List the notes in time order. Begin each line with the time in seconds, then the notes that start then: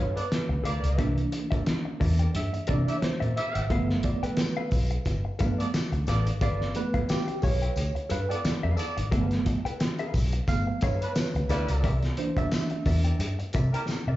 Already playing: G2 A4 B4 C#5 F5
0.14 B3 A4 B4 D5, muted hollow-body jazz guitar stroke, closed hi-hat
0.32 snare, closed hi-hat
0.49 D2, muted hollow-body jazz guitar stroke
0.64 D2 A#3 G4 A4 B4 D5 F5, closed hi-hat
0.83 C#2, muted hollow-body jazz guitar stroke, closed hi-hat
0.98 C2 E3 A#3 D4 A#4 D5 E5, kick, closed hi-hat
1.18 closed hi-hat
1.32 muted hollow-body jazz guitar stroke, closed hi-hat
1.51 A#4 D5 E5, muted fingered electric bass stroke, kick, closed hi-hat
1.66 muted hollow-body jazz guitar stroke, snare, closed hi-hat
1.85 muted hollow-body jazz guitar stroke
2.00 E2 A#4 D5 E5, kick, open hi-hat
2.19 A#4 D5 G5, closed hi-hat
2.34 G2 E5, muted hollow-body jazz guitar stroke, closed hi-hat
2.53 muted hollow-body jazz guitar stroke, closed hi-hat
2.67 C3 E3 A#3 D4 A#4 D5 E5, kick, closed hi-hat
2.87 A#3 G4 E5, muted hollow-body jazz guitar stroke, closed hi-hat
2.98 C#5, muted hollow-body jazz guitar stroke
3.02 C5, muted fingered electric bass stroke, snare, closed hi-hat
3.20 A#2 A#4 D5 E5, closed hi-hat
3.36 A#3 G4 E5, muted hollow-body jazz guitar stroke, closed hi-hat
3.55 G#1, muted hollow-body jazz guitar stroke, closed hi-hat
3.70 G1 F3 A3 B3 A4 B4 F5, kick, closed hi-hat
3.90 muted hollow-body jazz guitar stroke, snare
4.03 D5, muted hollow-body jazz guitar stroke, kick, closed hi-hat
4.23 A4 B4 G5, muted fingered electric bass stroke, closed hi-hat
4.37 muted hollow-body jazz guitar stroke, snare, closed hi-hat, tambourine
4.57 A4 B4 F5
4.71 B1, muted hollow-body jazz guitar stroke, kick, open hi-hat, tambourine
4.91 muted hollow-body jazz guitar stroke, closed hi-hat
5.05 G1, muted hollow-body jazz guitar stroke, kick, closed hi-hat, tambourine
5.25 muted hollow-body jazz guitar stroke
5.39 G2 F3 A3 B3 A4 B4 F5, kick, closed hi-hat, tambourine
5.58 B3 A4 D5, muted hollow-body jazz guitar stroke, closed hi-hat
5.74 snare, closed hi-hat, tambourine
5.92 D2, muted hollow-body jazz guitar stroke, closed hi-hat
6.07 A1 B3 A4 B4 D5 F5, snare, closed hi-hat, tambourine
6.26 G#1, muted hollow-body jazz guitar stroke, closed hi-hat
6.41 G1 A4 B4 D5 F5, kick, closed hi-hat, tambourine
6.61 snare
6.74 F3 A3 B3 B4, muted hollow-body jazz guitar stroke, closed hi-hat, tambourine
6.94 A4 B4 F5, muted fingered electric bass stroke, kick, closed hi-hat
7.09 G4, muted hollow-body jazz guitar stroke, snare, closed hi-hat, tambourine
7.28 muted hollow-body jazz guitar stroke, closed hi-hat
7.42 B1 A4 B4 C#5 F5, kick, open hi-hat, tambourine
7.62 A4 B4 G5, closed hi-hat
7.76 D2, muted hollow-body jazz guitar stroke, closed hi-hat, tambourine
7.95 muted hollow-body jazz guitar stroke, closed hi-hat
8.09 G2 A4 B4 F5, closed hi-hat, tambourine
8.29 B3 A4 B4 D5 G5, closed hi-hat
8.44 muted hollow-body jazz guitar stroke, muted fingered electric bass stroke, snare, closed hi-hat, tambourine
8.63 F2 A4 B4 F5
8.77 B3 A4 D5, muted hollow-body jazz guitar stroke, closed hi-hat, tambourine
8.97 G#1, muted hollow-body jazz guitar stroke, closed hi-hat
9.11 G1 F3 A3 B3 A4 B4 F5, kick, closed hi-hat
9.31 muted hollow-body jazz guitar stroke, snare, closed hi-hat
9.45 muted hollow-body jazz guitar stroke, kick, closed hi-hat, tambourine
9.65 A4 B4 G5, muted fingered electric bass stroke, closed hi-hat
9.80 muted hollow-body jazz guitar stroke, snare, closed hi-hat, tambourine
9.99 A4 B4 F5, closed hi-hat
10.14 B1, muted hollow-body jazz guitar stroke, kick, open hi-hat, tambourine
10.33 muted hollow-body jazz guitar stroke, closed hi-hat
10.48 G1 F3 A3 B3 F5, muted hollow-body jazz guitar stroke, kick, closed hi-hat, tambourine
10.67 muted hollow-body jazz guitar stroke
10.81 G2 A4 B4 C#5 F5, kick, closed hi-hat, tambourine
11.01 F3 D4 B4, muted hollow-body jazz guitar stroke, closed hi-hat
11.15 B4, snare, closed hi-hat, tambourine
11.35 D2, muted hollow-body jazz guitar stroke, closed hi-hat
11.49 D2 G3 E4 A4 B4 D5 F5, snare, closed hi-hat, tambourine
11.69 C#2, muted hollow-body jazz guitar stroke, closed hi-hat
11.84 C2 A#4 D5 E5, kick, closed hi-hat
12.02 snare, closed hi-hat
12.17 E3 A#3 D4 C5, muted hollow-body jazz guitar stroke, closed hi-hat
12.37 A#4 D5 E5, muted fingered electric bass stroke, kick, closed hi-hat
12.52 muted hollow-body jazz guitar stroke, snare, closed hi-hat, tambourine
12.70 muted hollow-body jazz guitar stroke, closed hi-hat
12.86 E2 A#4 D5 E5, kick, open hi-hat, tambourine
13.04 A#4 D5 G5, closed hi-hat
13.19 G2, muted hollow-body jazz guitar stroke, closed hi-hat, tambourine
13.39 muted hollow-body jazz guitar stroke, closed hi-hat
13.53 C3 A#4 D5 E5, kick, closed hi-hat, tambourine
13.73 G3 E4 A#4 D5 G5, closed hi-hat
13.88 muted hollow-body jazz guitar stroke, snare, tambourine
14.07 C3 A#4 D5 E5